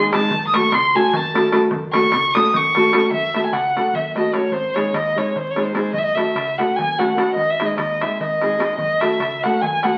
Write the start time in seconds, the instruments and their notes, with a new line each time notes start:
Already playing: nylon-string guitar D#4 G#4
0.05 darbuka tek
0.12 nylon-string guitar G#3 C4 D#4 G#4, violin A5, darbuka tek
0.30 fingered electric bass F#1, darbuka dum
0.47 violin D#6
0.53 nylon-string guitar A3 C#4 F#4 A4, violin C#6, darbuka tek
0.72 fingered electric bass C#2, violin C6, darbuka tek
0.84 darbuka tek
0.95 nylon-string guitar A3 C#4 F#4 A4, violin G#5
1.13 fingered electric bass F#1, violin A5, darbuka dum
1.25 darbuka tek
1.34 nylon-string guitar A3 C#4 F#4 A4, darbuka tek
1.44 darbuka tek
1.52 nylon-string guitar A3 C#4 F#4 A4, darbuka tek
1.70 fingered electric bass F#1, darbuka dum
1.82 darbuka tek
1.93 nylon-string guitar A3 C#4 F#4 A4, violin C#6, darbuka tek
2.03 darbuka tek
2.12 fingered electric bass C#2, darbuka tek
2.34 nylon-string guitar A3 C#4 F#4 A4, violin D#6, darbuka tek
2.44 darbuka tek
2.53 fingered electric bass F#1, violin C#6, darbuka dum
2.64 darbuka tek
2.75 nylon-string guitar A3 C#4 F#4 A4, darbuka tek
2.84 darbuka tek
2.93 nylon-string guitar A3 C#4 F#4 A4, darbuka tek
3.03 darbuka tek
3.10 fingered electric bass F#1, violin E5, darbuka dum
3.34 nylon-string guitar A3 C#4 F#4 A4, darbuka tek
3.46 violin G#5
3.52 fingered electric bass C#2, violin F#5, darbuka tek
3.76 nylon-string guitar A3 C#4 F#4 A4, darbuka tek
3.93 fingered electric bass F#1, violin E5, darbuka dum
4.06 darbuka tek
4.15 nylon-string guitar A3 C#4 F#4 A4, violin D#5, darbuka tek
4.33 nylon-string guitar A3 C#4 F#4 A4, violin C#5, darbuka tek
4.43 darbuka tek
4.51 fingered electric bass G#1, violin C5, darbuka dum
4.74 nylon-string guitar G#3 C4 D#4 G#4, violin C#5, darbuka tek
4.93 fingered electric bass D#2, violin D#5, darbuka tek
5.16 nylon-string guitar G#3 C4 D#4 G#4, violin C#5, darbuka tek
5.27 darbuka tek
5.36 fingered electric bass G#1, violin C5, darbuka dum
5.46 darbuka tek
5.50 violin C#5
5.56 nylon-string guitar G#3 C4 D#4 G#4, darbuka tek
5.63 violin C5
5.74 nylon-string guitar G#3 C4 D#4 G#4, violin C5, darbuka tek
5.85 darbuka tek
5.93 fingered electric bass F#1, violin D#5, darbuka dum
5.98 violin E5
6.03 violin D#5
6.14 nylon-string guitar A3 C#4 F#4 A4, violin E5, darbuka tek
6.35 fingered electric bass C#2, darbuka tek
6.58 nylon-string guitar A3 C#4 F#4 A4, violin F#5, darbuka tek
6.69 darbuka tek
6.76 fingered electric bass F#1, violin G#5, darbuka dum
6.89 darbuka tek
6.98 nylon-string guitar A3 C#4 F#4 A4, violin F#5, darbuka tek
7.16 nylon-string guitar A3 C#4 F#4 A4, darbuka tek
7.28 darbuka tek
7.34 fingered electric bass G#1, violin D#5, darbuka dum
7.48 violin E5, darbuka tek
7.60 nylon-string guitar G#3 C4 D#4 G#4, darbuka tek
7.65 violin D#5
7.78 fingered electric bass D#2, violin D#5, darbuka tek
7.90 darbuka tek
8.01 nylon-string guitar G#3 C4 D#4 G#4, violin E5, darbuka tek
8.11 violin E5, darbuka tek
8.20 fingered electric bass G#1, violin D#5, darbuka dum
8.31 darbuka tek
8.42 nylon-string guitar G#3 C4 D#4 G#4, darbuka tek
8.51 darbuka tek
8.59 nylon-string guitar G#3 C4 D#4 G#4, darbuka tek
8.77 fingered electric bass F#1, violin D#5, darbuka dum
9.00 nylon-string guitar A3 C#4 F#4 A4, violin E5, darbuka tek
9.19 fingered electric bass C#2, darbuka tek
9.43 nylon-string guitar A3 C#4 F#4 A4, violin F#5, darbuka tek
9.53 darbuka tek
9.61 fingered electric bass F#1, violin G#5, darbuka dum
9.73 darbuka tek
9.83 nylon-string guitar A3 C#4 F#4 A4, violin F#5, darbuka tek